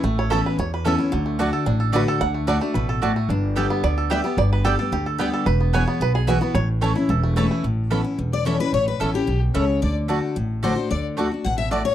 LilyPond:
<<
  \new Staff \with { instrumentName = "Fiddle" } { \time 4/4 \key a \mixolydian \tempo 4 = 221 r1 | r1 | r1 | r1 |
r1 | r1 | r1 | r2 r8 d''8 cis''8 b'8 |
cis''8 b'8 a'8 g'4 r8 cis''4 | d''8 r2 r8 c''4 | d''8 r4. fis''8 e''8 d''8 cis''8 | }
  \new Staff \with { instrumentName = "Steel-string acoustic guitar" } { \time 4/4 \key a \mixolydian r1 | r1 | r1 | r1 |
r1 | r1 | r1 | r2 r8 d''8 cis''8 b'8 |
cis''8 b'8 a'8 g'4 r8 cis''4 | d''8 r2 r8 c''4 | d''8 r4. fis''8 e''8 d''8 cis''8 | }
  \new Staff \with { instrumentName = "Mandolin" } { \time 4/4 \key a \mixolydian r4 <cis' a' e'' b''>8 r4. <cis' a' e'' b''>8 r8 | r4 <a fis' d'' a''>8 r4. <a fis' d'' a''>8 r8 | r4 <a fis' d'' a''>8 r4. <a fis' d'' a''>8 r8 | r4 <b g' d'' g''>8 r4. <b g' d'' g''>8 r8 |
r4 <b g' d'' g''>8 r4. <b g' d'' g''>8 r8 | r4 <b e' b' gis''>8 r4. <b e' b' gis''>8 r8 | r4 <a e' cis'' a''>8 r4. <a e' cis'' a''>8 r8 | r4 <cis' a' e'' b''>8 r4. <cis' a' e'' b''>8 r8 |
r4 <cis' a' e'' b''>8 r4. <cis' a' e'' b''>8 r8 | r4 <a fis' d'' a''>8 r4. <a fis' d'' a''>8 r8 | r4 <a fis' d'' a''>8 r4. <a fis' d'' a''>8 r8 | }
  \new Staff \with { instrumentName = "Five-string banjo" } { \time 4/4 \key a \mixolydian << { r8 cis''8 a'8 b'8 cis''8 b'8 a'4~ | a'8 r2 r8 b'8 a'8 | fis''4 d''4 b'8 r4. | r2 d''4 e''4 |
d''8 b'8 a'4 g'8 r4. | b'4 cis''4 b'8 gis'8 fis'4 | cis''8 r2. r8 | r1 |
r1 | r1 | r1 | } \\ { a4. r2 cis'8 | fis8 a8 fis'8 a'8 d'8 a'4. | r8 a4 a4 a'8 fis'8 a8 | d'4 a'8 b4 a'4 b8~ |
b4 r8 a'4 a'8 b8 a'8 | r8 b4 b4. r8 b8 | r4 cis'8 e'8 a'8 a8 e'8 a8 | r1 |
r1 | r1 | r1 | } >> }
  \new Staff \with { instrumentName = "Steel-string acoustic guitar" } { \time 4/4 \key a \mixolydian << { r4 <e b cis' e'>4 r4 <e b cis' e'>8 <cis' e'>8 | r4 <d a d' fis'>4 r4 <d a d' fis'>4 | r4 <d a d' fis'>8 <d' fis'>8 r2 | r4 <d g b g'>4 r4 <d g b g'>8 <b g'>8 |
r4 <d g b g'>8 <b g'>8 r4 <d g b g'>4 | r4 <e gis b e'>4 r4 <e gis b e'>8 <b e'>8 | r4 <e a cis' e'>8 <cis' e'>8 r4 <e a cis' e'>4 | r4 <e b cis' e'>8 <cis' e'>8 r4 <e b cis' e'>8 <cis' e'>8 |
r4 <e b cis' e'>8 <cis' e'>8 r2 | r4 <d a d' fis'>4 r4 <d a d' fis'>8 <d' fis'>8 | r4 <d a d' fis'>8 <d' fis'>8 r2 | } \\ { a,2 e,2 | d2 a,2 | r2 b,4 a,4 | g,2 d2 |
g,2 d2 | e,2 b,2 | a,2 e,2 | a,2 e,2 |
a,2 b,4 cis4 | d2 a,2 | d2 b,4 a,4 | } >> }
  \new Staff \with { instrumentName = "Upright bass" } { \clef bass \time 4/4 \key a \mixolydian a,,2 e,2 | d,2 a,,2 | d,2 a,,2 | g,,2 d,2 |
g,,2 d,2 | e,,2 b,,2 | a,,2 e,,2 | a,,2 e,,2 |
a,,4 a,,4 b,,4 cis,4 | d,2 a,,2 | d,2 a,,2 | }
>>